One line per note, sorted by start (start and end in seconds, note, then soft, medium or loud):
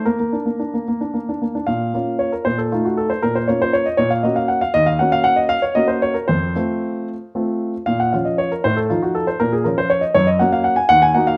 0.05 0.18 A#3 soft
0.05 1.42 A#4 medium
0.20 0.34 A#3 soft
0.33 0.47 D4 soft
0.46 0.61 A#3 soft
0.59 0.74 D4 soft
0.74 0.87 A#3 soft
0.88 1.01 A#3 soft
1.01 1.15 D4 soft
1.14 1.29 A#3 soft
1.29 1.43 D4 soft
1.42 1.56 A#3 soft
1.55 1.69 D4 soft
1.67 1.93 A#2 soft
1.67 2.19 F5 medium
1.94 2.31 A#3 soft
1.94 2.32 C#4 soft
1.94 2.32 F4 soft
2.19 2.33 C#5 medium
2.32 2.46 A#4 soft
2.45 2.71 A#2 soft
2.45 2.59 C5 medium
2.58 2.72 A4 soft
2.72 3.10 A3 soft
2.72 3.10 D#4 soft
2.72 2.85 F4 medium
2.85 2.98 F#4 soft
2.97 3.10 A4 medium
3.10 3.23 C5 soft
3.23 3.48 A#2 soft
3.23 3.36 A#4 medium
3.35 3.49 C5 medium
3.48 3.85 A#3 soft
3.48 3.85 C#4 soft
3.48 3.86 F4 soft
3.48 3.61 C#5 medium
3.62 3.74 C5 medium
3.73 3.86 C#5 medium
3.86 3.99 D#5 medium
3.97 4.23 A#2 soft
3.97 4.11 C#5 medium
4.10 4.24 F5 medium
4.23 4.60 A#3 soft
4.23 4.61 C#4 soft
4.23 4.61 F#4 soft
4.23 4.37 D#5 soft
4.36 4.49 F5 medium
4.48 4.62 F#5 medium
4.61 4.75 F5 medium
4.74 4.99 D#2 medium
4.74 4.87 D#5 medium
4.86 5.00 F5 medium
4.99 5.55 A#3 soft
4.99 5.55 C#4 soft
4.99 5.56 F#4 soft
4.99 5.12 F#5 medium
5.12 5.25 F5 medium
5.24 5.37 F#5 medium
5.36 5.50 D#5 medium
5.49 5.63 F5 medium
5.62 5.76 C#5 medium
5.75 6.14 A#3 soft
5.75 6.14 C#4 soft
5.75 6.14 F#4 soft
5.75 5.89 D#5 medium
5.88 6.02 C5 medium
6.02 6.15 C#5 medium
6.14 6.28 A#4 medium
6.28 6.55 F2 soft
6.28 7.08 C5 medium
6.56 7.13 A3 soft
6.56 7.13 C4 soft
6.56 7.13 F4 soft
7.35 7.73 A3 soft
7.35 7.73 C4 soft
7.35 7.73 F4 soft
7.86 8.13 A#2 soft
7.86 8.00 F5 medium
8.00 8.13 F#5 medium
8.13 8.51 F3 soft
8.13 8.51 C#4 soft
8.13 8.51 F4 soft
8.13 8.26 F5 soft
8.25 8.39 D#5 soft
8.38 8.52 C#5 medium
8.52 8.65 A#4 soft
8.64 8.90 A2 soft
8.64 8.77 C5 medium
8.77 8.90 A4 soft
8.90 9.26 F3 soft
8.90 9.27 D#4 soft
8.90 9.03 F4 medium
9.03 9.15 F#4 soft
9.15 9.27 A4 medium
9.27 9.40 C5 medium
9.40 9.65 A#2 soft
9.40 9.52 A#4 medium
9.53 9.65 G#4 medium
9.64 10.01 F3 soft
9.64 10.02 C#4 soft
9.64 10.02 F4 soft
9.64 9.77 A#4 medium
9.78 9.90 C5 medium
9.90 10.03 C#5 medium
10.01 10.15 D#5 medium
10.14 10.39 F#2 medium
10.14 10.27 C#5 medium
10.27 10.40 D#5 medium
10.39 10.76 A#3 soft
10.39 10.77 C#4 soft
10.39 10.77 F#4 soft
10.39 10.52 F#5 medium
10.52 10.65 F5 medium
10.64 10.77 F#5 medium
10.76 10.90 G#5 medium
10.89 11.15 D#2 medium
10.89 11.02 F#5 medium
11.02 11.15 G#5 medium
11.14 11.37 A#3 soft
11.14 11.37 D#4 soft
11.14 11.37 F#4 soft
11.14 11.28 F#5 medium
11.27 11.37 F5 medium